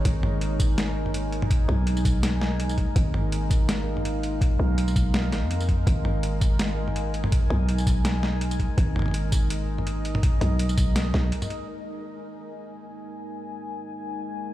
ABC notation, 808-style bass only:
X:1
M:4/4
L:1/16
Q:"Swing 16ths" 1/4=165
K:G#dor
V:1 name="808-style bass" clef=bass
G,,,16- | G,,,2 B,,,12- B,,, z | G,,,16- | G,,,2 B,,,8 G,,, E,,4- E,, |
G,,,16- | G,,,2 B,,,12- B,,, z | G,,,16- | G,,,2 B,,,8 B,,,2 z4 |
z16 | z16 |]